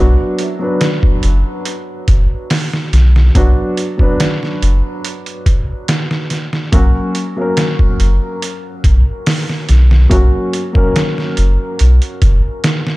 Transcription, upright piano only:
Already playing: F#3 B3
0.00 D4 F#4
0.59 F#3 B3 D4
0.64 B4
3.35 F#3 B3 D4 F#4
3.98 F#3 B3 D4
4.03 B4
6.72 F#3 A#3 C#4 F#4
7.37 F#3 A#3 C#4
7.41 A#4
10.09 F#3 A#3 C#4 F#4
10.73 F#3 A#3 C#4
10.78 A#4

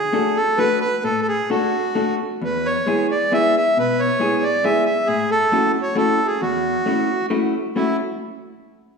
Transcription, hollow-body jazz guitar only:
0.13 A3 D4 F#4 A4
0.58 A3 D4 F#4 A4
1.04 A2
1.50 A3 D4 F#4 A4
1.95 A3 D4 F#4 A4
2.42 E2
2.86 G#3 B3 E4 G#4
3.32 G#3 B3 E4 G#4
3.77 B2
4.19 G#3 B3 E4 G#4
4.64 G#3 B3 E4 G#4
5.08 A2
5.52 A3 C#4 E4 F#4
5.95 A3 C#4 E4 F#4
6.42 E2
6.86 A3 C#4 E4 F#4
7.30 A3 C#4 E4 F#4
7.76 A3 C#4 E4 F#4

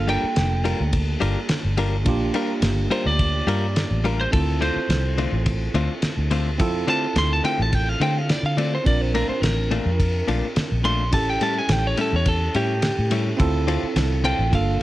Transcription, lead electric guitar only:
0.09 G5
2.92 C5
3.07 D5
4.21 C5
4.33 A4
4.62 C5
6.90 A5
7.18 C6
7.33 A5
7.45 G5
7.62 A5
7.75 G5
7.89 F5
8.02 G5
8.18 F5
8.31 D5
8.46 F5
8.58 D5
8.75 C5
8.87 D5
9.01 C5
9.15 A#4
9.29 C5
9.42 A#4
10.85 C6
11.14 A5
11.30 G5
11.43 A5
11.58 G#5
11.72 G5
11.87 C#5
12.01 A4
12.16 C#5
12.28 A4
12.56 G4
14.25 G5
14.55 F5

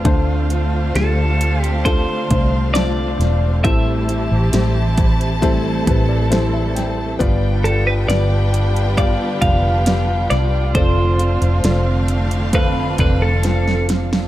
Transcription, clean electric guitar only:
0.96 A4
1.62 G4
1.85 C5
2.74 D5
3.64 E5
7.64 A4
7.87 B4
8.09 D5
8.98 D5
9.42 F5
10.30 D5
10.75 C5
12.55 B4
13.00 B4
13.22 A4

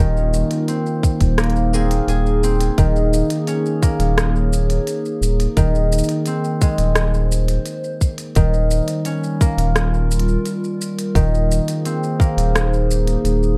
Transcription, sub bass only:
0.00 D#1
1.21 D#1
2.08 D#1
2.78 D#1
3.99 D#1
5.21 D#1
5.57 D#1
6.78 D#1
8.36 D#1
9.57 D#1
11.15 D#1
12.37 D#1
13.24 D#1

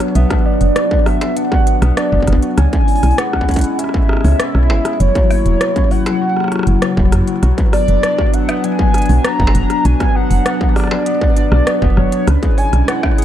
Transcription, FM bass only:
0.15 B1
0.61 F#1
1.82 B1
2.12 F#1
2.27 F#1
2.58 C#2
3.03 B1
4.24 C#2
4.55 B1
4.70 G#1
5.00 F#1
5.46 E1
6.67 F#1
6.97 E1
7.12 F#2
7.43 B1
7.88 F#1
9.09 B1
9.40 F#1
9.55 F#1
9.85 B1
10.31 F#1
11.52 B1
11.82 F#1
11.97 F#1
12.28 C#2
12.73 B1

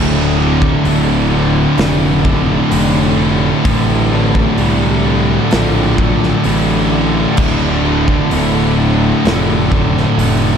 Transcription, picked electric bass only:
Already playing: D1
0.84 D1
1.78 F1
2.71 F1
3.65 A1
4.58 C2
5.52 A#1
6.45 A1
7.38 D1
8.32 D1
9.25 F1
10.17 F1

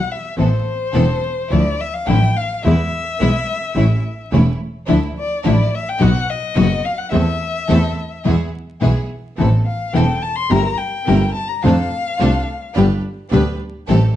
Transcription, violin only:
Already playing: F#5
0.11 E5
0.40 C5
1.52 D5
1.80 E5
1.94 F5
2.07 G5
2.37 F5
2.63 E5
5.19 D5
5.47 D5
5.75 E5
5.89 G5
6.02 F#5
6.30 D#5
6.85 F5
6.98 F#5
7.12 E5
9.66 F5
9.94 G5
10.23 A5
10.36 C6
10.51 A#5
10.78 G5
11.35 A5
11.48 A#5
11.63 F5

